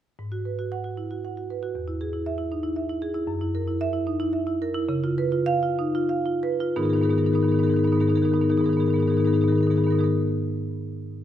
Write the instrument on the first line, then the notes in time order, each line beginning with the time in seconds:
marimba
0.19 G#2
0.32 F#4
0.45 B4
0.59 F#4
0.72 F#5
0.84 F#4
0.97 E4
1.11 F#4
1.25 F#5
1.37 F#4
1.50 B4
1.63 F#4
1.75 E2
1.88 E4
2.01 G#4
2.13 E4
2.26 E5
2.38 E4
2.52 D#4
2.63 E4
2.76 E5
2.89 E4
3.02 G#4
3.14 E4
3.27 F#2
3.41 E4
3.55 A#4
3.68 E4
3.81 E5
3.93 E4
4.07 D#4
4.20 E4
4.33 E5
4.47 E4
4.62 A#4
4.74 E4
4.89 C#3
5.04 F4
5.18 B4
5.32 F4
5.46 F5
5.63 F4
5.79 D#4
5.95 F4
6.09 F5
6.26 F4
6.43 B4
6.60 F4
6.76 G#2 D#3 B3 D#4 G#4 A#4
6.82 G#2 D#3 B3 D#4 G#4 A#4
6.89 B3 G#4 A#4
6.93 G#2 D#3 D#4 G#4 A#4
7.01 G#2 D#3 B3 D#4 G#4 A#4
7.10 D#3 B3 D#4 G#4 A#4
7.15 G#2 B3 D#4 G#4 A#4
7.24 G#2 D#3 B3 D#4 G#4 A#4
7.32 G#2 D#3 B3 D#4 G#4 A#4
7.40 G#2 D#3 B3 D#4 G#4 A#4
7.48 G#2 B3 D#4 G#4 A#4
7.54 D#3 G#4 A#4
7.59 G#2 B3 D#4
7.63 D#3 D#4 G#4 A#4
7.68 G#2 B3 G#4 A#4
7.73 D#3 B3 D#4 G#4
7.79 G#2 A#4
7.84 D#3 B3 D#4 G#4 A#4
7.88 G#2 D#4 G#4
7.93 D#3 B3 A#4
7.98 G#2 D#3 B3 D#4 G#4 A#4
8.07 G#2 B3 D#4 G#4 A#4
8.12 G#2 D#3 G#4 A#4
8.17 B3 D#4
8.22 G#2 D#3 B3 D#4 G#4 A#4
8.29 D#3 G#4 A#4
8.33 G#2 B3 D#4 G#4
8.37 D#3 A#4
8.41 G#2 B3 D#4 G#4 A#4
8.50 G#2 D#3 B3 D#4 G#4 A#4
8.57 G#2 D#3 B3 D#4 G#4 A#4
8.64 B3 D#4 G#4 A#4
8.69 G#2 D#3 D#4 G#4 A#4
8.77 G#2 D#3 B3 G#4 A#4
8.81 B3 D#4
8.86 G#2 D#3 G#4 A#4
8.90 B3 D#4 A#4
8.96 G#2 D#3 G#4 A#4
9.00 B3 D#4 G#4
9.06 G#2 D#3 D#4 G#4 A#4
9.12 G#2 B3 A#4
9.17 D#3 B3 D#4 G#4 A#4
9.24 G#2 D#3 B3 D#4 G#4 A#4
9.33 G#2 B3 D#4 G#4 A#4
9.38 D#3 D#4 G#4 A#4
9.43 G#2 B3
9.48 G#2 D#3 D#4 G#4 A#4
9.52 B3 G#4 A#4
9.57 D#3 B3 D#4
9.61 G#2 G#4 A#4
9.67 G#2 D#3 B3 D#4 G#4
9.71 A#4
9.76 D#3 B3 D#4 G#4 A#4
9.80 G#2 D#4 G#4 A#4
9.87 G#2 D#3 B3 A#4
9.91 D#4 G#4
9.95 G#2 D#3 B3 G#4 A#4
10.01 B3 D#4 A#4
10.07 G#4